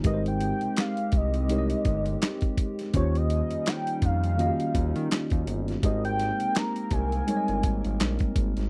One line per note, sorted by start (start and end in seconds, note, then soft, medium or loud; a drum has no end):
0.04 0.53 G#1 loud
0.04 1.37 G#3 medium
0.04 2.91 G#3 medium
0.04 2.91 C4 medium
0.04 1.38 D#4 medium
0.04 2.91 G4 medium
0.04 1.38 G4 medium
0.04 1.38 A#4 medium
0.04 0.13 B4 medium
0.04 0.25 D#5 medium
0.04 kick loud
0.04 closed hi-hat medium
0.14 1.42 C5 medium
0.26 0.81 G5 loud
0.26 closed hi-hat soft
0.41 closed hi-hat medium
0.61 0.68 C2 soft
0.61 closed hi-hat soft
0.76 1.18 F5 loud
0.76 snare loud
0.76 clap loud
0.76 closed hi-hat medium
0.97 closed hi-hat medium
1.12 1.74 C2 medium
1.12 kick medium
1.12 closed hi-hat medium
1.16 2.59 D#5 loud
1.34 closed hi-hat soft
1.48 2.82 G#3 medium
1.48 2.82 D#4 medium
1.48 2.83 G4 medium
1.48 2.83 A#4 medium
1.48 1.58 C#5 medium
1.48 closed hi-hat medium
1.58 2.87 D#5 medium
1.70 closed hi-hat soft
1.85 2.16 G1 loud
1.85 kick medium
1.85 closed hi-hat medium
2.06 closed hi-hat soft
2.22 snare loud
2.22 clap medium
2.22 closed hi-hat medium
2.41 kick medium
2.41 closed hi-hat soft
2.57 kick medium
2.57 closed hi-hat medium
2.79 snare soft
2.79 closed hi-hat soft
2.93 3.42 D#2 loud
2.93 4.26 D#3 medium
2.93 5.80 G3 medium
2.93 4.27 A#3 medium
2.93 5.80 C#4 medium
2.93 4.27 C#4 medium
2.93 5.80 D#4 medium
2.93 4.27 F4 medium
2.93 4.28 G4 medium
2.93 4.28 C5 medium
2.93 3.18 C#5 medium
2.93 kick loud
2.93 closed hi-hat medium
3.15 3.70 D#5 loud
3.15 closed hi-hat soft
3.30 closed hi-hat medium
3.51 3.57 F2 soft
3.51 closed hi-hat soft
3.66 4.06 G5 loud
3.66 snare loud
3.66 clap loud
3.66 closed hi-hat medium
3.87 closed hi-hat medium
4.02 4.50 F2 loud
4.02 5.48 F5 loud
4.02 kick medium
4.02 closed hi-hat medium
4.24 closed hi-hat soft
4.37 5.71 D#3 medium
4.37 5.71 A#3 medium
4.37 5.71 C#4 medium
4.37 5.72 F4 medium
4.37 4.47 F#4 medium
4.37 5.72 D#5 medium
4.37 closed hi-hat medium
4.47 5.75 G4 medium
4.60 closed hi-hat soft
4.75 4.92 D#2 medium
4.75 kick medium
4.75 closed hi-hat medium
4.96 5.08 D#3 medium
4.96 closed hi-hat soft
5.11 snare loud
5.11 clap medium
5.11 closed hi-hat medium
5.30 5.44 D#2 medium
5.30 kick medium
5.30 closed hi-hat soft
5.47 5.77 G1 medium
5.47 closed hi-hat medium
5.68 snare soft
5.68 closed hi-hat soft
5.83 6.31 G#1 loud
5.83 7.16 G#3 medium
5.83 8.69 A#3 medium
5.83 8.69 C4 medium
5.83 7.16 D#4 medium
5.83 7.16 G4 medium
5.83 8.69 A#4 medium
5.83 7.17 A#4 medium
5.83 7.17 C5 medium
5.83 6.03 D#5 medium
5.83 kick loud
5.83 closed hi-hat medium
6.05 6.58 G5 loud
6.05 closed hi-hat soft
6.19 snare soft
6.19 closed hi-hat medium
6.40 6.46 C2 soft
6.40 closed hi-hat medium
6.55 6.94 A#5 loud
6.55 snare loud
6.55 clap medium
6.55 closed hi-hat medium
6.76 closed hi-hat medium
6.91 7.22 C2 loud
6.91 8.36 G#5 loud
6.91 kick medium
6.91 closed hi-hat medium
7.12 closed hi-hat soft
7.27 8.61 G3 medium
7.27 8.60 G#3 medium
7.27 8.60 D#4 medium
7.27 8.61 A#4 medium
7.27 7.36 C#5 medium
7.27 closed hi-hat medium
7.37 8.65 D#5 medium
7.48 7.61 G1 medium
7.48 closed hi-hat soft
7.63 7.81 G#1 medium
7.63 kick medium
7.63 closed hi-hat medium
7.85 7.98 G#1 loud
7.85 closed hi-hat soft
8.00 8.18 A#1 loud
8.00 snare loud
8.00 clap medium
8.00 closed hi-hat medium
8.19 kick medium
8.19 closed hi-hat soft
8.36 8.54 G#1 medium
8.36 kick medium
8.36 closed hi-hat medium
8.57 8.70 G#1 medium
8.57 snare soft
8.57 closed hi-hat soft